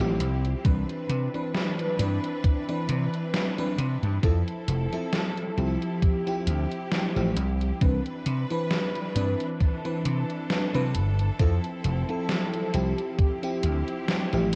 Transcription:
Already playing: string section F3 C4 E4 G4
0.00 slap bass A1, fm electric piano E4 G4, closed hi-hat
0.20 slap bass C2, closed hi-hat
0.45 closed hi-hat
0.64 slap bass C2, fm electric piano E3 C4 D4 B4, string section E3 D4 B4, kick, closed hi-hat
0.89 closed hi-hat
1.09 slap bass C3, closed hi-hat
1.34 fm electric piano E3 C4 D4 B4, closed hi-hat
1.55 snare, closed hi-hat
1.79 closed hi-hat
1.99 slap bass G2, fm electric piano E3 C4 D4 B4, closed hi-hat
2.24 closed hi-hat
2.44 kick, closed hi-hat
2.68 fm electric piano E3 C4 D4 B4, closed hi-hat
2.89 slap bass C3, closed hi-hat
3.14 closed hi-hat
3.34 snare, closed hi-hat
3.58 fm electric piano E3 C4 D4 B4, closed hi-hat
3.78 slap bass C3, closed hi-hat
4.03 slap bass G2, closed hi-hat
4.22 slap bass F2, fm electric piano F3 C4 E4 A4, string section F3 E4 A4, kick, closed hi-hat
4.48 closed hi-hat
4.68 slap bass F1, closed hi-hat
4.92 fm electric piano F3 C4 E4 A4, closed hi-hat
5.13 snare, closed hi-hat
5.37 closed hi-hat
5.57 slap bass C2, fm electric piano F3 C4 E4 G4, closed hi-hat
5.82 closed hi-hat
6.02 string section G4, kick, closed hi-hat
6.26 fm electric piano F3 C4 E4 G4, closed hi-hat
6.47 slap bass D2, closed hi-hat
6.72 closed hi-hat
6.92 snare, closed hi-hat
7.16 slap bass A1, fm electric piano F3 C4 E4 G4, closed hi-hat
7.37 slap bass C2, closed hi-hat
7.61 closed hi-hat
7.81 slap bass C2, fm electric piano E3 C4 D4 B4, string section E3 D4 B4, kick, closed hi-hat
8.06 closed hi-hat
8.26 slap bass C3, closed hi-hat
8.50 fm electric piano E3 C4 D4 B4, closed hi-hat
8.71 snare, closed hi-hat
8.95 closed hi-hat
9.15 slap bass G2, fm electric piano E3 C4 D4 B4, closed hi-hat
9.40 closed hi-hat
9.60 string section A4, kick, closed hi-hat
9.84 fm electric piano E3 C4 D4 B4, closed hi-hat
10.05 slap bass C3, closed hi-hat
10.30 closed hi-hat
10.50 snare, closed hi-hat
10.74 slap bass C3, fm electric piano E3 C4 D4 B4, closed hi-hat
10.95 slap bass G1, closed hi-hat
11.19 closed hi-hat
11.39 slap bass F2, fm electric piano F3 C4 E4 A4, string section F3 C4 E4, kick, closed hi-hat
11.64 closed hi-hat
11.84 slap bass F1, closed hi-hat
12.08 fm electric piano F3 C4 E4 A4, closed hi-hat
12.29 snare, closed hi-hat
12.54 closed hi-hat
12.73 slap bass C2, fm electric piano F3 C4 E4 G4, closed hi-hat
12.98 closed hi-hat
13.19 string section C4 E4 G4, kick, closed hi-hat
13.43 fm electric piano F3 C4 E4 G4, closed hi-hat
13.63 slap bass D2, closed hi-hat
13.88 closed hi-hat
14.08 snare, closed hi-hat
14.33 slap bass A1, fm electric piano F3 C4 E4 G4, closed hi-hat

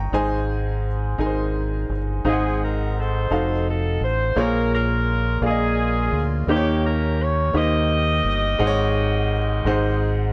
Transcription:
Already playing: fingered electric bass G1, grand piano D#3 D#4 A#4 C#5 G5 A#5 C6 C#6 D#6
0.12 fingered electric bass G#1, grand piano G#2 D#4 G#4 C5 G#5
1.18 fingered electric bass G#1, grand piano D#4 G#4 A#4 G#5
1.26 grand piano C5
1.89 fingered electric bass G1
2.24 fingered electric bass G#1, grand piano G#2 D#4 G#4 C5 F5, saxophone section C4 D#4 G#4
2.32 grand piano F#5
2.64 saxophone section A#4
2.98 saxophone section D#4 A4 C5
3.31 fingered electric bass F1, grand piano D#4 F#4 A4 F5
3.69 saxophone section A4
4.01 fingered electric bass A1, saxophone section C5
4.36 fingered electric bass A#1, grand piano A#2 A#3 F4 G#4 C#5, saxophone section C#4 F4 A#4
4.74 saxophone section C#4 F4 A#4
5.42 fingered electric bass A#1, grand piano A#3 F4 G#4 D5
5.46 saxophone section C#4 F4 G#4
5.50 grand piano D#5
6.12 fingered electric bass D2
6.47 fingered electric bass D#2, grand piano D#3 A#3 D#4 G4 C5, saxophone section C#4 G4
6.52 saxophone section A#3
6.56 grand piano C#5
6.86 saxophone section A#4
7.22 saxophone section C#5
7.53 fingered electric bass D#2, grand piano A#3 D#4 G4 C5, saxophone section D#5
7.57 saxophone section G4 A#4
8.24 fingered electric bass G1
8.59 fingered electric bass G#1, grand piano G#2 G#3 D#4 C5 F#5
8.67 grand piano C#5
9.65 fingered electric bass G#1, grand piano G#2 G#3 D#4 C5 F#5

